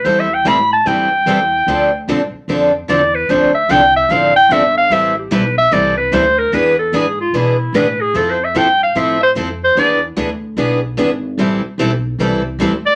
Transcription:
X:1
M:4/4
L:1/8
Q:"Swing" 1/4=148
K:Am
V:1 name="Clarinet"
(3c e g b a g4- | g2 z4 d B | c e g e f g e f | e G B e d B c _B |
B A ^G F E2 B G | (3A c e g f e c z c | d z6 z | z6 z d |]
V:2 name="Steel-string acoustic guitar"
[E,G,CEA] z [E,G,CEA] z [E,G,CEA] z [E,G,CEA] z | [D,F,CDA] z [D,F,CDA] z [D,F,CDA] z [D,F,CDA] z | [D,F,CDA] z [D,F,CDA] z [D,F,CDA] z [D,F,CDA] z | [E,G,CEA] z [E,G,CEA] z [E,G,CEA] z [E,G,CEA] z |
[E,B,D^G] z [E,B,DG] z [E,B,DG] z [E,B,DG] z | [F,CEA] z [F,CEA] z [F,CEA] z [F,CEA] z | [E,B,D^G] z [E,B,DG] z [E,B,DG] z [E,B,DG] z | [E,G,CEA] z [E,G,CEA] z [E,G,CEA] z [E,G,CEA] z |]
V:3 name="Steel-string acoustic guitar"
[E,G,CEA] z [E,G,CEA] z [E,G,CEA] z [E,G,CEA] z | [D,F,CDA] z [D,F,CDA] z [D,F,CDA] z [D,F,CDA] z | [D,F,CDA] z [D,F,CDA] z [D,F,CDA] z [D,F,CDA] z | [E,G,CEA] z [E,G,CEA] z [E,G,CEA] z [E,G,CEA] z |
[E,B,D^GB] z [E,B,DGB] z [E,B,DGB] z [E,B,DGB] z | [F,CEA] z [F,CEA] z [F,CEA] z [F,CEA] z | [E,B,D^GB] z [E,B,DGB] z [E,B,DGB] z [E,B,DGB] z | [E,G,CEA] z [E,G,CEA] z [E,G,CEA] z [E,G,CEA] z |]
V:4 name="Upright bass" clef=bass
E,,2 A,,2 G,,2 E,,2 | D,,2 G,, z F,,2 E,,2 | D,,2 C,,2 A,,,2 G,,,2 | A,,,2 B,,,2 C,,2 D,,2 |
E,,2 ^G,,2 B,,2 A,,2 | F,,2 G,,2 A,,2 F,,2 | E,,2 D,,2 B,,,2 ^G,,,2 | A,,, z B,,,2 C,,2 D,,2 |]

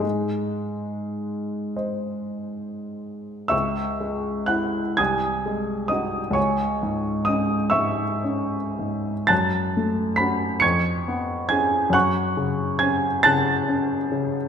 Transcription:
X:1
M:6/8
L:1/8
Q:3/8=44
K:C#m
V:1 name="Grand piano"
G,3 z3 | [ec'e']2 [ff'] [gd'g']2 [dd'] | [cgc']2 [dd'] [ec'e']3 | [af'a']2 [bb'] [c'g'c'']2 [gg'] |
[fc'f']2 [gg'] [af'a']3 |]
V:2 name="Grand piano" clef=bass
G,,3 [^Bd]3 | C,, G, E ^B,,, G, [DF] | C,, G,, C G,, C G,, | F,, A, [CF] ^E,, B, [CG] |
F,, C, C C, C C, |]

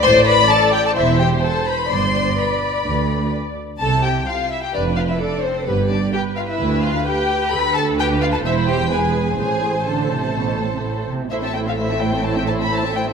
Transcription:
X:1
M:4/4
L:1/16
Q:1/4=128
K:Gmix
V:1 name="Violin section"
c'2 b2 a2 g a e2 g2 a2 b2 | c'4 b8 z4 | a2 g2 f2 e g d2 f e d2 c2 | B2 d2 g2 f e3 f2 g4 |
[K:Am] b2 a2 g2 f a e2 g2 ^g4 | ^g4 a8- a2 z2 | e a g f e2 g2 a g a b a2 g2 |]
V:2 name="Violin section"
c2 B2 A2 G A E2 G2 A2 B2 | c4 B8 z4 | A2 G2 F2 E G D2 F E D2 C2 | B,2 D2 G2 F E3 F2 G4 |
[K:Am] B2 A2 G2 F A E2 G2 ^G4 | ^G4 A8- A2 z2 | c [Ae] c [Ae] c [Ae] c [Ae] c [Ae] c [Ae] c [Ae] c [Ae] |]
V:3 name="Viola section"
d8 c8 | d12- d2 z2 | z8 B4 A4 | G4 B12 |
[K:Am] A4 B4 c4 B4 | c12- c2 z2 | [A,E] C [A,E] C [A,E] C [A,E] C [A,E] C [A,E] C [A,E] C [A,E] C |]
V:4 name="Cello section" clef=bass
A,,4 z4 E,,4 z4 | G,,4 z4 D,,4 z4 | C,4 z4 F,,4 z4 | G,,4 z4 D,,4 z4 |
[K:Am] D,,8 E,,8 | A,,4 D,2 C,2 B,,2 A,, C, A,,2 C, B,, | A,,16 |]
V:5 name="Double bass section" clef=bass
A,,,4 z4 E,,,4 z4 | G,,,4 z4 D,,4 z4 | C,,4 z4 F,,,4 z4 | G,,,4 z4 D,,4 z4 |
[K:Am] D,,8 E,,,8 | A,,,12- A,,,2 z2 | A,,,16 |]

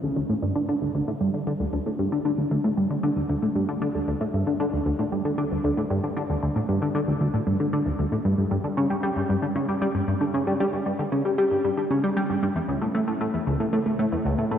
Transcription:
X:1
M:4/4
L:1/16
Q:1/4=115
K:Gdor
V:1 name="Synth arpeggio sound" clef=bass
D,, D,, A,, G,, D, D, D,, D,, A,, G,, D, D, D,, D,, A,, G,, | D, D, D,, D,, A,, G,, D, D, D,, D,, A,, G,, D, D, D,, D,, | A,, G,, D, D, D,, D,, A,, G,, D, D, D,, D,, A,, G,, D, D, | D,, D,, A,, G,, D, D, D,, D,, A,, G,, D, D, D,, D,, A,, G,, |
G,, G,, D, ^C, G, G, G,, G,, D, C, G, G, G,, G,, D, C, | G, G, G,, G,, D, ^C, G, G, G,, G,, D, C, G, G, G,, G,, | E,, ^C,, A,, A,, A,, A,, E,, C,, A,, A,, A,, A,, E,, C,, A,, A,, |]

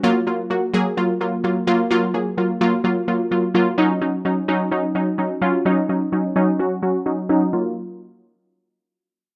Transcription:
X:1
M:4/4
L:1/8
Q:1/4=128
K:F#
V:1 name="Synth pluck"
[F,A,E] [F,A,E] [F,A,F] [F,A,G] [F,A,E] [F,A,E] [F,A,E] [F,A,E] | [F,A,E] [F,A,G] [F,A,E] [F,A,E] [F,A,E] [F,A,E] [F,A,E] [F,A,E] | [F,CD] [F,CD] [F,CD] [F,CD] [F,CD] [F,CD] [F,CD] [F,CE] | [F,CD] [F,CD] [F,CD] [F,CD] [F,CF] [F,CF] [F,CD] [F,CD] |
[F,A,E] z6 z |]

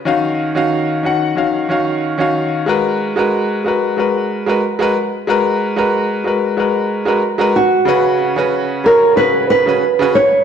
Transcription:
X:1
M:4/4
L:1/16
Q:1/4=92
K:G#dor
V:1 name="Nylon-string guitar"
z16 | z16 | z12 z2 F2- | F6 A2 B2 B4 c2 |]
V:2 name="Grand piano"
[D,CFe]3 [D,CFe]3 [D,CFf]2 [D,CFe]2 [D,CFe]3 [D,CFe]3 | [G,FAB]3 [G,FAB]3 [G,FAB]2 [G,FAB]3 [G,FAB] z [G,FAB] z2 | [G,FAB]3 [G,FAB]3 [G,FAB]2 [G,FAB]3 [G,FAB] z [G,FAB] z2 | [C,CFB]3 [C,CFB]3 [C,CFc]2 [C,CFB]3 [C,CFB] z [C,CFB] z2 |]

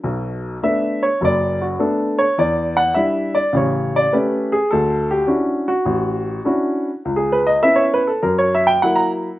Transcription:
X:1
M:4/4
L:1/16
Q:"Swing" 1/4=102
K:Bm
V:1 name="Grand piano"
z4 e2 c2 d2 F2 A2 c2 | d2 f2 e2 d2 c2 d2 B2 ^G2 | A2 G2 z2 F6 z4 | z ^G B ^d e c B A ^A c e =g f ^a z2 |]
V:2 name="Grand piano"
[B,,,B,,]4 [A,B,D]2 z2 [F,,,F,,]4 [A,B,D]2 z2 | E,,4 [G,DE]2 z2 [A,,,C,]4 [A,CG]2 z2 | D,,4 [CDEF]2 z2 A,,,4 [CDEF]2 z2 | C,,4 [B,CE]2 z2 F,,4 [F,^A,E]2 z2 |]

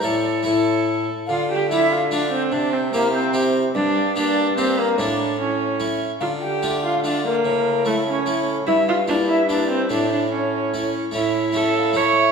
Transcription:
X:1
M:3/4
L:1/8
Q:1/4=146
K:Aphr
V:1 name="Recorder"
d d ^c3 z | f g e f d c | d c B c2 z | d2 d2 c B |
d2 ^c3 z | f g2 f d B- | B2 A ^c2 z | e f d e d c |
d d ^c3 z | ^c2 e f e e |]
V:2 name="Viola"
A2 A3 z | F G E F D C | D C B, C2 z | D2 D2 C B, |
D2 ^C3 z | F G2 F D B,- | B,2 A, ^C2 z | E F D E D C |
D D ^C3 z | E2 A2 ^c2 |]
V:3 name="Harpsichord"
[A,EA]2 [A,EA]4 | z2 [A,DF]2 [A,DF]2 | z2 [CEG]2 [CEG]2 | z2 [B,DG]2 [B,DG]2 |
[A,DE]2 z2 [A,E]2 | z2 [A,DF]2 [A,DF]2 | z2 [A,E]2 [A,E]2 | z2 [B,E]2 [B,E]2 |
[A,E]2 z2 [A,E]2 | [A,^CE]2 [A,CE]2 [A,CE]2 |]
V:4 name="Harpsichord" clef=bass
A,,2 A,,3 z | D,6 | C,6 | G,,6 |
A,,4- A,, z | D,6 | ^C,6 | G,,6 |
A,,4- A,, z | A,,6 |]
V:5 name="Bassoon" clef=bass
A,,2 A,,3 z | D,6 | C,6 | G,,6 |
A,,4- A,, z | D,6 | A,,6 | G,,6 |
A,,4- A,, z | A,,6 |]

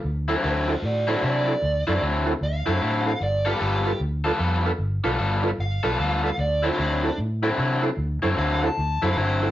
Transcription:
X:1
M:4/4
L:1/16
Q:"Swing" 1/4=151
K:Dmix
V:1 name="Lead electric guitar"
z4 [Ac]2 [Ac]2 [Fd]2 [Fd]2 d4- | d4 z4 =f6 f2 | d2 G2 G4 z8 | z8 =f6 f2 |
d2 =F2 D4 z8 | z4 =f2 a4 f2 c2 c2 |]
V:2 name="Tonewheel organ"
z2 [EFAc] z3 [EFAd] z3 [EFAc] z3 [EFAd] z | z2 [EFAc] z3 [EFAc] z3 [EFAc] z3 [EFAc] z | z2 [D=FAB] z3 [DFAB] z3 [DFAB] z3 [DFAB] z | z2 [D=FAB] z3 [DFAB] z3 [DFAB] z3 [DFAB] z |
z2 [EFAc] z3 [EFAc] z3 [EFAd] z3 [EFAc] z | z2 [EFAc] z3 [EFAc] z3 [EFAc] z3 [EFAc] z |]
V:3 name="Overdriven electric guitar"
z2 [D,F,CE]2 [D,F,CE]2 z4 [D,F,CE]2 [D,F,CE]2 z2 | z2 [D,F,CE]2 [D,F,CE]2 z4 [D,F,CE]2 [D,F,CE]2 z2 | z2 [G,B,=FA]2 [G,B,FA]2 z4 [G,B,FA]2 [G,B,FA]2 z2 | z2 [G,B,=FA]2 [G,B,FA]2 z4 [G,B,FA]2 [G,B,FA]2 z2 |
z2 [D,F,CE]2 [D,F,CE]2 z4 [D,F,CE]2 [D,F,CE]2 z2 | z2 [D,F,CE]2 [D,F,CE]2 z4 [D,F,CE]2 [D,F,CE]2 z2 |]
V:4 name="Fingered electric bass" clef=bass
D,,4 D,,4 A,,4 C,4 | D,,2 F,,2 D,,4 D,,2 F,,2 A,,4 | G,,,4 G,,,4 D,,4 =F,,4 | G,,,2 B,,,2 G,,,4 G,,,2 B,,,2 D,,4 |
D,,4 D,,4 A,,4 C,4 | D,,2 F,,2 D,,4 D,,2 F,,2 G,,,4 |]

